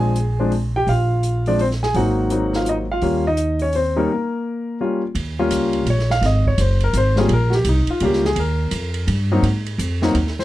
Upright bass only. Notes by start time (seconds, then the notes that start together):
Already playing: A#1
0.87 A#1
1.94 G#1
3.02 D#2
5.15 D#2
5.50 C#2
5.85 A#1
6.21 G#1
6.58 F#1
6.93 G#1
7.28 A#1
7.65 C2
7.87 muted upright bass stroke
8.01 C#2
8.35 D#2
8.71 F2
9.07 G2
9.43 G#2
9.78 F2
10.14 D#2